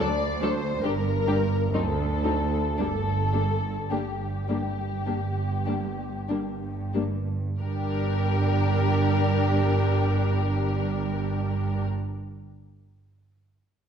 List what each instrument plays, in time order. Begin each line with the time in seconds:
0.00 double bass section D2, cello section D2, violin section D5
0.41 viola section F#3 D4, violin section A4 C5
0.83 double bass section G1, cello section G2, viola section G3 D4, violin section G4 A#4
1.27 viola section G3 D4, violin section G4
1.73 double bass section D2, cello section D2, viola section F#3 C4, violin section D#4 A4
2.23 viola section F#3 C4, violin section D#4
2.77 double bass section G1, cello section G2, viola section G3 A#3, violin section D4 A4
3.33 viola section G3 A#3, violin section D4
3.90 double bass section G1, cello section G2, viola section G3 A#3, violin section D4 G4
4.49 viola section G3 A#3, violin section D4
5.06 double bass section G1, cello section G2, viola section G3 A#3, violin section D4
5.66 viola section G3 A#3, violin section D4
6.29 double bass section G1, cello section G2, viola section G3 A#3, violin section D4
6.94 viola section G3 A#3, violin section D4
7.60 double bass section G1, cello section G2, viola section G3 D4, violin section G4 A#4